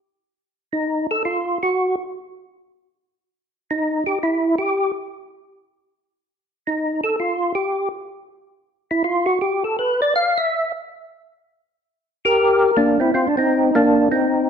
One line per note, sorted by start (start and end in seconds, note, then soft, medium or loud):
0.73 1.07 D#4 medium
1.11 1.23 A4 loud
1.25 1.58 F4 medium
1.63 1.95 F#4 medium
3.71 4.04 D#4 medium
4.06 4.19 G4 medium
4.23 4.55 E4 medium
4.58 4.92 G4 medium
6.67 7.01 D#4 medium
7.04 7.16 A4 medium
7.20 7.52 F4 medium
7.55 7.89 G4 medium
8.91 9.03 E4 medium
9.04 9.26 F4 medium
9.26 9.39 F#4 medium
9.41 9.63 G4 medium
9.64 9.77 A4 medium
9.79 10.01 B4 medium
10.02 10.14 D5 loud
10.16 10.38 F5 medium
10.38 10.72 E5 loud
12.25 12.71 G4 medium
12.25 12.77 A#4 medium
12.77 12.98 A#3 medium
12.77 13.00 D4 medium
13.00 13.12 C4 medium
13.00 13.12 E4 medium
13.14 13.27 C4 medium
13.14 13.28 F4 medium
13.27 13.36 D4 medium
13.37 13.71 C4 medium
13.37 13.75 D#4 medium
13.75 14.09 A#3 medium
13.75 14.09 D4 medium
14.12 14.50 C4 medium
14.12 14.50 D#4 medium